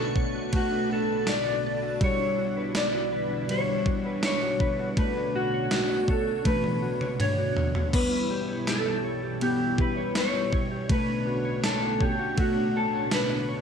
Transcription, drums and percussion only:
0.16 kick medium
0.53 kick medium
0.53 ride medium
1.27 snare loud
1.27 ride medium
1.27 tambourine medium
2.01 kick loud
2.01 ride soft
2.75 snare loud
2.75 ride medium
2.75 tambourine medium
3.49 ride medium
3.86 kick medium
4.23 snare loud
4.23 ride medium
4.23 tambourine medium
4.60 kick medium
4.97 kick loud
4.97 ride soft
5.71 snare loud
5.71 ride medium
5.71 tambourine medium
6.08 kick medium
6.45 kick loud
6.45 high tom medium
6.45 ride medium
6.64 high tom medium
7.01 mid tom medium
7.20 mid tom loud
7.20 ride medium
7.57 floor tom loud
7.75 floor tom medium
7.93 kick loud
7.93 crash medium
7.93 ride medium
8.67 snare loud
8.67 ride medium
8.67 tambourine medium
9.41 ride medium
9.78 kick loud
10.15 snare loud
10.15 ride medium
10.15 tambourine medium
10.53 kick medium
10.90 kick loud
10.90 ride medium
11.64 snare loud
11.64 ride medium
11.64 tambourine medium
12.01 kick medium
12.38 kick medium
12.38 ride medium
13.11 snare loud
13.11 ride medium
13.11 tambourine medium

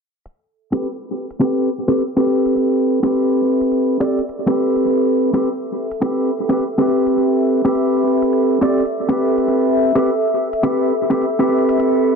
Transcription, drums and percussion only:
0.26 closed hi-hat soft
0.73 closed hi-hat medium
0.83 closed hi-hat medium
1.31 closed hi-hat medium
1.41 closed hi-hat soft
1.88 closed hi-hat medium
1.99 closed hi-hat medium
2.46 closed hi-hat medium
2.56 closed hi-hat medium
3.04 closed hi-hat medium
3.14 closed hi-hat soft
3.61 closed hi-hat medium
3.72 closed hi-hat medium
4.19 closed hi-hat medium
4.29 closed hi-hat soft
4.76 closed hi-hat medium
4.86 closed hi-hat medium
5.34 closed hi-hat medium
5.44 closed hi-hat soft
5.91 closed hi-hat medium
6.02 closed hi-hat medium
6.59 closed hi-hat soft
7.07 closed hi-hat medium
7.18 closed hi-hat soft
7.65 closed hi-hat medium
7.75 closed hi-hat soft
8.22 closed hi-hat medium
8.33 closed hi-hat soft
8.80 closed hi-hat medium
8.85 closed hi-hat soft
9.38 closed hi-hat medium
9.48 closed hi-hat soft
9.95 closed hi-hat medium
10.06 closed hi-hat soft
10.53 closed hi-hat medium
10.64 closed hi-hat soft
11.11 closed hi-hat medium
11.22 closed hi-hat soft
11.69 closed hi-hat medium
11.80 closed hi-hat soft

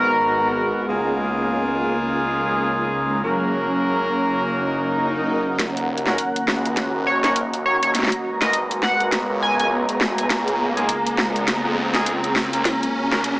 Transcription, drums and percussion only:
5.59 snare soft
5.59 closed hi-hat medium
5.77 closed hi-hat soft
5.98 closed hi-hat soft
6.06 snare soft
6.18 closed hi-hat medium
6.36 closed hi-hat medium
6.48 snare soft
6.65 closed hi-hat soft
6.77 snare medium
6.77 closed hi-hat medium
7.24 snare soft
7.24 closed hi-hat soft
7.36 closed hi-hat medium
7.53 closed hi-hat soft
7.83 closed hi-hat medium
7.95 snare soft
7.95 closed hi-hat medium
7.99 snare soft
8.03 snare soft
8.08 snare soft
8.12 closed hi-hat soft
8.42 snare soft
8.42 closed hi-hat soft
8.53 closed hi-hat medium
8.71 closed hi-hat medium
8.83 snare medium
9.00 closed hi-hat soft
9.12 snare medium
9.12 closed hi-hat medium
9.60 closed hi-hat soft
9.89 closed hi-hat soft
10.01 snare medium
10.18 closed hi-hat medium
10.30 snare medium
10.30 closed hi-hat medium
10.48 closed hi-hat soft
10.77 closed hi-hat soft
10.89 closed hi-hat medium
11.06 closed hi-hat medium
11.18 snare medium
11.36 closed hi-hat soft
11.48 snare medium
11.48 closed hi-hat medium
11.95 snare medium
11.95 closed hi-hat soft
12.06 closed hi-hat medium
12.24 closed hi-hat soft
12.36 snare medium
12.53 closed hi-hat medium
12.65 snare medium
12.65 closed hi-hat medium
12.83 closed hi-hat soft
13.12 snare medium
13.12 closed hi-hat soft
13.24 closed hi-hat medium

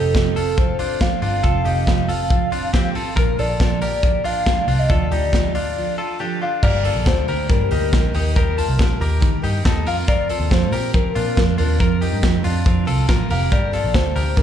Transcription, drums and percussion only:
0.15 kick loud
0.15 snare loud
0.15 closed hi-hat medium
0.37 open hi-hat medium
0.58 kick loud
0.58 closed hi-hat medium
0.79 open hi-hat medium
1.01 kick loud
1.01 snare loud
1.01 closed hi-hat medium
1.22 open hi-hat medium
1.44 kick loud
1.44 closed hi-hat medium
1.65 open hi-hat medium
1.87 kick loud
1.87 snare loud
1.87 closed hi-hat medium
2.09 open hi-hat medium
2.30 kick loud
2.30 closed hi-hat medium
2.52 open hi-hat medium
2.74 kick loud
2.74 snare loud
2.95 open hi-hat medium
3.17 kick loud
3.17 closed hi-hat medium
3.39 open hi-hat medium
3.60 kick loud
3.60 snare loud
3.60 closed hi-hat medium
3.82 open hi-hat medium
4.03 kick loud
4.03 closed hi-hat medium
4.25 open hi-hat medium
4.46 kick loud
4.46 snare loud
4.46 closed hi-hat medium
4.68 open hi-hat medium
4.90 kick loud
4.90 closed hi-hat medium
5.12 open hi-hat medium
5.33 kick loud
5.33 snare loud
5.33 closed hi-hat medium
5.55 open hi-hat medium
6.63 kick loud
6.63 crash medium
6.85 open hi-hat medium
7.06 kick loud
7.06 snare loud
7.06 closed hi-hat medium
7.28 open hi-hat medium
7.50 kick loud
7.50 closed hi-hat medium
7.71 open hi-hat medium
7.93 kick loud
7.93 snare loud
7.93 closed hi-hat medium
8.15 open hi-hat medium
8.36 kick loud
8.36 closed hi-hat medium
8.58 open hi-hat medium
8.79 kick loud
8.79 snare loud
9.01 open hi-hat medium
9.22 kick loud
9.22 closed hi-hat medium
9.44 open hi-hat medium
9.65 kick loud
9.65 snare loud
9.65 closed hi-hat medium
9.87 open hi-hat medium
10.08 kick loud
10.08 closed hi-hat medium
10.29 open hi-hat medium
10.51 kick loud
10.51 snare loud
10.51 closed hi-hat medium
10.73 open hi-hat medium
10.94 kick loud
10.94 closed hi-hat medium
11.16 open hi-hat medium
11.37 kick loud
11.37 snare loud
11.37 closed hi-hat medium
11.58 open hi-hat medium
11.80 kick loud
11.80 closed hi-hat medium
12.02 open hi-hat medium
12.23 kick loud
12.23 snare loud
12.23 closed hi-hat medium
12.44 open hi-hat medium
12.66 kick loud
12.66 closed hi-hat medium
12.87 open hi-hat medium
13.09 kick loud
13.09 snare loud
13.09 closed hi-hat medium
13.30 open hi-hat medium
13.52 kick loud
13.52 closed hi-hat medium
13.73 open hi-hat medium
13.94 kick loud
13.94 snare loud
13.94 closed hi-hat medium
14.16 open hi-hat medium
14.37 kick loud
14.37 closed hi-hat medium

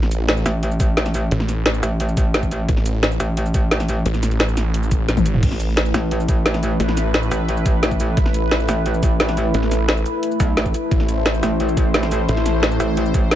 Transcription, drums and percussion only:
0.03 snare soft
0.11 closed hi-hat medium
0.11 shaker medium
0.29 snare loud
0.29 closed hi-hat medium
0.37 shaker soft
0.46 snare medium
0.46 closed hi-hat medium
0.46 shaker medium
0.63 closed hi-hat medium
0.71 shaker soft
0.80 kick loud
0.80 closed hi-hat medium
0.80 shaker medium
0.97 snare loud
0.97 closed hi-hat medium
1.06 snare soft
1.06 shaker soft
1.14 closed hi-hat medium
1.14 shaker medium
1.31 closed hi-hat medium
1.40 snare soft
1.49 snare soft
1.49 closed hi-hat medium
1.49 shaker medium
1.66 snare loud
1.66 closed hi-hat medium
1.74 shaker soft
1.83 closed hi-hat medium
1.83 shaker medium
2.00 closed hi-hat medium
2.09 shaker soft
2.17 kick loud
2.17 closed hi-hat medium
2.17 shaker medium
2.34 snare loud
2.34 closed hi-hat medium
2.43 kick medium
2.43 shaker soft
2.51 closed hi-hat medium
2.51 shaker medium
2.69 kick loud
2.69 closed hi-hat medium
2.77 snare soft
2.86 closed hi-hat medium
2.86 shaker medium
3.03 snare loud
3.03 closed hi-hat loud
3.11 shaker soft
3.20 closed hi-hat medium
3.20 shaker medium
3.37 closed hi-hat loud
3.46 shaker soft
3.54 kick loud
3.54 closed hi-hat medium
3.54 shaker medium
3.71 snare loud
3.71 closed hi-hat loud
3.80 snare soft
3.80 shaker soft
3.89 closed hi-hat medium
3.89 shaker medium
4.06 closed hi-hat loud
4.14 snare soft
4.14 shaker soft
4.23 snare soft
4.23 closed hi-hat medium
4.23 shaker medium
4.31 closed hi-hat soft
4.40 snare loud
4.40 closed hi-hat loud
4.49 shaker soft
4.57 snare medium
4.57 closed hi-hat medium
4.57 shaker medium
4.74 closed hi-hat loud
4.83 shaker soft
4.91 kick loud
4.91 closed hi-hat medium
4.91 shaker medium
5.08 snare medium
5.08 closed hi-hat loud
5.17 kick medium
5.17 high tom medium
5.17 shaker soft
5.26 closed hi-hat medium
5.26 shaker medium
5.34 mid tom medium
5.43 kick loud
5.43 closed hi-hat medium
5.43 crash medium
5.51 snare soft
5.60 closed hi-hat medium
5.60 shaker medium
5.77 snare loud
5.77 closed hi-hat loud
5.86 shaker soft
5.94 snare medium
5.94 closed hi-hat medium
5.94 shaker medium
6.11 closed hi-hat loud
6.20 shaker soft
6.29 kick loud
6.29 closed hi-hat medium
6.29 shaker medium
6.46 snare loud
6.46 closed hi-hat medium
6.54 snare medium
6.54 shaker soft
6.63 closed hi-hat medium
6.63 shaker medium
6.80 closed hi-hat medium
6.89 snare soft
6.97 snare soft
6.97 closed hi-hat medium
6.97 shaker medium
7.14 snare loud
7.14 closed hi-hat loud
7.23 shaker soft
7.31 closed hi-hat medium
7.31 shaker medium
7.49 closed hi-hat loud
7.57 shaker soft
7.66 kick loud
7.66 closed hi-hat medium
7.66 shaker medium
7.83 snare loud
7.83 closed hi-hat medium
7.91 kick medium
7.91 shaker soft
8.00 closed hi-hat medium
8.00 shaker medium
8.17 kick loud
8.17 closed hi-hat medium
8.26 snare soft
8.34 closed hi-hat medium
8.34 shaker medium
8.51 snare loud
8.51 closed hi-hat medium
8.60 shaker soft
8.69 snare medium
8.69 closed hi-hat medium
8.69 shaker medium
8.86 closed hi-hat loud
8.94 shaker soft
9.03 kick loud
9.03 closed hi-hat medium
9.03 shaker medium
9.20 snare loud
9.20 closed hi-hat medium
9.29 snare medium
9.29 shaker soft
9.37 closed hi-hat medium
9.37 shaker medium
9.54 closed hi-hat medium
9.63 snare soft
9.71 snare soft
9.71 closed hi-hat medium
9.71 shaker medium
9.89 snare loud
9.89 closed hi-hat medium
9.97 shaker soft
10.06 closed hi-hat medium
10.06 shaker medium
10.23 closed hi-hat medium
10.31 shaker soft
10.40 kick loud
10.40 closed hi-hat medium
10.40 shaker medium
10.57 snare loud
10.57 closed hi-hat medium
10.66 kick medium
10.66 shaker soft
10.74 closed hi-hat medium
10.74 shaker medium
10.91 kick loud
10.91 closed hi-hat medium
11.00 snare soft
11.09 closed hi-hat medium
11.09 shaker medium
11.26 snare loud
11.26 closed hi-hat medium
11.34 shaker soft
11.43 snare medium
11.43 closed hi-hat medium
11.43 shaker medium
11.60 closed hi-hat medium
11.69 shaker soft
11.77 kick loud
11.77 closed hi-hat medium
11.77 shaker medium
11.94 snare loud
11.94 closed hi-hat medium
12.03 snare soft
12.03 shaker soft
12.11 closed hi-hat medium
12.11 shaker medium
12.29 closed hi-hat medium
12.37 snare soft
12.46 snare soft
12.46 closed hi-hat medium
12.46 shaker medium
12.63 snare loud
12.63 closed hi-hat medium
12.71 shaker soft
12.80 closed hi-hat medium
12.80 shaker medium
12.97 closed hi-hat loud
13.06 shaker soft
13.14 kick loud
13.14 closed hi-hat medium
13.14 shaker medium
13.31 snare loud
13.31 closed hi-hat medium

